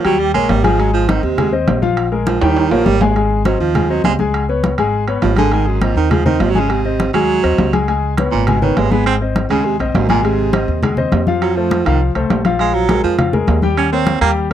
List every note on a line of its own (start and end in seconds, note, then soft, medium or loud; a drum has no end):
0.05 0.33 D#2 medium
0.05 0.21 F#3 loud
0.05 0.29 G3 medium
0.05 0.29 G4 medium
0.05 0.29 G5 medium
0.05 high conga soft
0.05 high timbale medium
0.20 0.34 G3 medium
0.20 high conga soft
0.34 0.48 A#1 medium
0.34 0.51 G#3 loud
0.34 0.59 A#3 medium
0.34 0.59 A#4 medium
0.34 0.59 C#5 medium
0.34 high conga soft
0.34 high timbale medium
0.49 1.18 G#1 medium
0.49 0.66 G3 medium
0.49 high conga medium
0.49 high timbale medium
0.49 low timbale medium
0.64 0.81 F3 medium
0.64 0.76 G#3 medium
0.64 0.76 G#4 medium
0.64 0.76 G#5 medium
0.64 high conga medium
0.64 high timbale loud
0.79 0.93 F#3 medium
0.79 1.03 G#3 medium
0.79 1.03 G#4 medium
0.79 1.03 G#5 medium
0.79 high conga soft
0.79 high timbale medium
0.94 1.10 F3 medium
0.94 high conga soft
1.08 1.25 D#3 medium
1.08 1.33 C4 medium
1.08 1.33 C5 medium
1.08 1.33 D#5 medium
1.08 high conga loud
1.08 high timbale medium
1.08 low timbale medium
1.23 1.64 D#2 loud
1.23 1.53 C3 medium
1.23 high conga soft
1.38 1.50 G#3 medium
1.38 1.50 G#4 medium
1.38 1.50 G#5 medium
1.38 high conga soft
1.38 low conga medium
1.38 high timbale medium
1.53 1.77 C4 medium
1.53 1.77 C5 medium
1.53 1.77 D#5 medium
1.53 high conga soft
1.68 2.36 A#1 medium
1.68 high conga medium
1.68 high timbale medium
1.68 low timbale medium
1.82 2.06 F3 medium
1.82 2.07 F4 medium
1.82 2.07 F5 medium
1.82 high conga medium
1.97 high conga soft
1.97 high timbale medium
2.12 2.36 G#3 medium
2.12 2.36 G#4 medium
2.12 2.36 A#4 medium
2.12 high conga soft
2.27 2.43 F3 medium
2.27 high conga loud
2.27 high timbale medium
2.27 low timbale medium
2.41 2.69 D#2 medium
2.41 2.72 D#3 loud
2.41 2.66 G3 medium
2.41 2.66 G4 medium
2.41 2.66 G5 medium
2.41 high conga soft
2.41 high timbale loud
2.56 high conga soft
2.56 high timbale loud
2.71 2.85 A#1 medium
2.71 2.87 F3 loud
2.71 2.95 A#3 medium
2.71 2.96 A#4 medium
2.71 2.96 C#5 medium
2.71 high conga soft
2.71 low timbale loud
2.85 3.55 G#1 medium
2.85 3.00 G3 loud
2.85 high conga medium
2.85 low timbale medium
3.01 3.13 G#3 medium
3.01 3.13 G#4 medium
3.01 3.13 G#5 medium
3.01 high conga medium
3.01 low timbale loud
3.16 3.40 G#3 medium
3.16 3.40 G#4 medium
3.16 3.40 G#5 medium
3.16 high conga soft
3.16 high timbale medium
3.31 high conga soft
3.45 3.59 F#3 medium
3.45 3.70 C4 medium
3.45 3.70 C5 medium
3.45 3.70 D#5 medium
3.45 high conga medium
3.45 high timbale medium
3.45 low timbale medium
3.60 4.01 D#2 medium
3.60 3.91 F3 medium
3.60 high conga soft
3.75 3.87 G#3 medium
3.75 3.87 G#4 medium
3.75 3.88 G#5 medium
3.75 high conga soft
3.75 low conga medium
3.75 high timbale medium
3.89 4.04 F#3 medium
3.89 4.14 C4 medium
3.89 4.14 C5 medium
3.89 4.14 D#5 medium
3.89 high conga soft
4.04 4.73 C#2 medium
4.04 4.13 G#3 medium
4.04 high conga medium
4.04 high timbale medium
4.04 low timbale medium
4.19 4.44 G#3 medium
4.19 4.44 G#4 medium
4.19 4.44 G#5 medium
4.19 high conga medium
4.34 high conga soft
4.34 high timbale medium
4.49 4.73 B3 medium
4.49 4.73 B4 medium
4.49 4.74 C#5 medium
4.49 high conga soft
4.64 high conga loud
4.64 high timbale medium
4.64 low timbale medium
4.78 5.20 G#1 medium
4.78 5.03 G#3 medium
4.78 5.03 G#4 medium
4.78 5.03 G#5 medium
4.78 high conga soft
4.78 high timbale medium
4.93 high conga soft
5.08 5.32 B3 medium
5.08 5.32 B4 medium
5.08 5.32 C#5 medium
5.08 high conga soft
5.08 high timbale medium
5.22 5.91 G#1 medium
5.22 5.36 F3 medium
5.22 high conga medium
5.22 high timbale medium
5.22 low timbale medium
5.36 5.54 D3 loud
5.36 5.50 G#3 medium
5.36 5.50 G#4 medium
5.36 5.50 G#5 medium
5.36 high conga medium
5.36 high timbale medium
5.52 5.69 D#3 medium
5.52 5.77 G#3 medium
5.52 5.77 G#4 medium
5.52 5.77 G#5 medium
5.52 high conga soft
5.52 high timbale medium
5.67 5.83 F#2 medium
5.67 high conga soft
5.81 5.96 A#2 medium
5.81 6.06 C4 medium
5.81 6.06 C5 medium
5.81 6.06 D#5 medium
5.81 high conga loud
5.81 high timbale medium
5.81 low timbale medium
5.96 6.37 D#2 medium
5.96 6.12 D#3 loud
5.96 high conga soft
6.11 6.25 F3 loud
6.11 6.23 G#3 medium
6.11 6.23 G#4 medium
6.11 6.23 G#5 medium
6.11 high conga soft
6.11 low conga medium
6.11 high timbale medium
6.25 6.42 D#3 medium
6.25 6.50 C4 medium
6.25 6.50 C5 medium
6.25 6.50 D#5 medium
6.25 high conga soft
6.25 low conga medium
6.40 7.09 G#1 medium
6.40 6.51 F3 medium
6.40 high conga medium
6.40 high timbale medium
6.40 low timbale medium
6.50 6.61 F#3 medium
6.55 6.79 G#3 medium
6.55 6.79 G#4 medium
6.55 6.80 G#5 medium
6.55 high conga medium
6.60 6.71 C#3 medium
6.69 7.13 C3 medium
6.69 high conga soft
6.69 high timbale medium
6.85 7.09 C4 medium
6.85 7.09 C5 medium
6.85 7.09 D#5 medium
6.85 high conga soft
7.00 high conga loud
7.00 high timbale medium
7.00 low timbale medium
7.14 7.42 D#2 medium
7.14 7.84 F#3 loud
7.14 7.38 G#3 medium
7.14 7.39 G#4 medium
7.14 7.39 G#5 medium
7.14 high conga soft
7.14 high timbale medium
7.30 high conga soft
7.43 7.58 D#2 medium
7.43 7.68 C4 medium
7.43 7.68 C5 medium
7.43 7.68 D#5 medium
7.43 high conga soft
7.43 high timbale medium
7.58 8.27 C#2 medium
7.58 high conga medium
7.58 high timbale medium
7.58 low timbale medium
7.73 7.85 G#3 medium
7.73 7.86 G#4 medium
7.73 7.86 G#5 medium
7.73 high conga medium
7.73 high timbale medium
7.88 8.12 G#3 medium
7.88 8.13 G#4 medium
7.88 8.13 G#5 medium
7.88 high conga soft
7.88 high timbale medium
8.03 high conga soft
8.17 8.42 B3 medium
8.17 8.42 B4 medium
8.17 8.42 C#5 medium
8.17 high conga loud
8.17 high timbale medium
8.17 low timbale medium
8.32 8.74 G#1 medium
8.32 8.49 A#2 medium
8.32 high conga soft
8.47 8.61 B2 medium
8.47 8.60 G#3 medium
8.47 8.60 G#4 medium
8.47 8.60 G#5 medium
8.47 high conga soft
8.47 low conga medium
8.47 high timbale loud
8.62 8.78 D#3 medium
8.62 8.86 B3 medium
8.62 8.86 B4 medium
8.62 8.86 C#5 medium
8.62 high conga soft
8.62 low conga medium
8.77 9.45 G#1 medium
8.77 8.93 G#3 medium
8.77 high conga medium
8.77 high timbale medium
8.77 low timbale medium
8.91 9.16 G#3 medium
8.91 9.06 B3 loud
8.91 9.16 G#4 medium
8.91 9.16 G#5 medium
8.91 high conga medium
9.06 9.15 C4 medium
9.06 high conga soft
9.06 high timbale medium
9.21 9.45 C4 medium
9.21 9.45 C5 medium
9.21 9.46 D#5 medium
9.21 high conga soft
9.36 high conga loud
9.36 high timbale medium
9.36 low timbale medium
9.50 9.78 D#2 medium
9.50 9.67 C#3 loud
9.50 9.75 G#3 medium
9.50 9.75 G#4 medium
9.50 9.75 G#5 medium
9.50 high conga soft
9.50 high timbale medium
9.65 9.78 C3 medium
9.65 high conga soft
9.79 9.93 A#1 medium
9.79 9.95 D#2 medium
9.79 10.04 C4 medium
9.79 10.04 C5 medium
9.79 10.04 D#5 medium
9.79 high conga soft
9.79 high timbale medium
9.94 10.63 G#1 medium
9.94 10.08 F#2 medium
9.94 high conga medium
9.94 high timbale medium
9.94 low timbale medium
10.09 10.25 A#2 loud
10.09 10.21 G#3 medium
10.09 10.22 G#4 medium
10.09 10.22 G#5 medium
10.09 high conga medium
10.09 high timbale medium
10.23 10.82 C3 medium
10.23 10.48 G#3 medium
10.23 10.48 G#4 medium
10.23 10.48 G#5 medium
10.23 high conga soft
10.23 high timbale medium
10.39 high conga soft
10.53 10.78 C4 medium
10.53 10.78 C5 medium
10.53 10.78 D#5 medium
10.53 high conga loud
10.53 high timbale loud
10.53 low timbale medium
10.68 11.09 D#2 medium
10.68 high conga soft
10.83 10.95 G#3 medium
10.83 10.95 G#4 medium
10.83 10.95 G#5 medium
10.83 high conga soft
10.83 low conga medium
10.83 high timbale loud
10.97 11.22 C4 medium
10.97 11.22 C5 medium
10.97 11.22 D#5 medium
10.97 high conga soft
10.97 low conga medium
11.12 11.81 F2 medium
11.12 high conga medium
11.12 high timbale medium
11.12 low timbale medium
11.27 11.51 F3 medium
11.27 11.51 F4 medium
11.27 11.52 F5 medium
11.27 high conga medium
11.42 11.58 F#3 medium
11.42 high conga soft
11.42 high timbale medium
11.56 11.87 F3 medium
11.56 11.81 A3 medium
11.56 11.81 A4 medium
11.56 11.81 C5 medium
11.56 high conga soft
11.71 high conga loud
11.71 high timbale medium
11.71 low timbale medium
11.86 12.14 C2 medium
11.86 12.01 D#3 medium
11.86 12.10 F3 medium
11.86 12.10 F4 medium
11.86 12.11 F5 medium
11.86 high conga soft
11.86 high timbale loud
12.01 high conga soft
12.15 12.29 C2 medium
12.15 12.40 A3 medium
12.15 12.40 A4 medium
12.15 12.40 C5 medium
12.15 high conga soft
12.15 high timbale medium
12.30 12.98 A#1 medium
12.30 high conga medium
12.30 high timbale medium
12.30 low timbale medium
12.45 12.57 F3 medium
12.45 12.57 F4 medium
12.45 12.58 F5 medium
12.45 high conga medium
12.45 high timbale medium
12.59 12.84 F3 medium
12.59 12.76 G#3 medium
12.59 12.84 F4 medium
12.59 12.84 F5 medium
12.59 high conga soft
12.59 high timbale medium
12.74 13.03 F#3 loud
12.74 high conga soft
12.89 13.13 G#3 medium
12.89 13.13 G#4 medium
12.89 13.14 A#4 medium
12.89 high conga loud
12.89 high timbale medium
12.89 low timbale medium
13.04 13.45 F2 medium
13.04 13.17 F3 loud
13.04 high conga soft
13.18 13.30 F3 medium
13.18 13.31 F4 medium
13.18 13.31 F5 medium
13.18 high conga soft
13.18 low conga medium
13.18 high timbale loud
13.33 13.57 G#3 medium
13.33 13.57 G#4 medium
13.33 13.58 A#4 medium
13.33 high conga soft
13.33 low conga medium
13.47 14.16 D#2 medium
13.47 high conga medium
13.47 high timbale medium
13.47 low timbale medium
13.62 13.87 G3 medium
13.62 13.87 G4 medium
13.62 13.87 G5 medium
13.62 high conga medium
13.77 13.91 C#4 medium
13.77 high conga soft
13.77 high timbale medium
13.92 14.17 A#3 medium
13.92 14.20 C4 loud
13.92 14.17 A#4 medium
13.92 14.17 C#5 medium
13.92 high conga soft
14.07 high conga loud
14.07 high timbale medium
14.07 low timbale medium
14.21 14.49 D#2 medium
14.21 14.46 G3 medium
14.21 14.30 A#3 loud
14.21 14.46 G4 medium
14.21 14.46 G5 medium
14.21 high conga soft
14.21 high timbale medium
14.37 high conga soft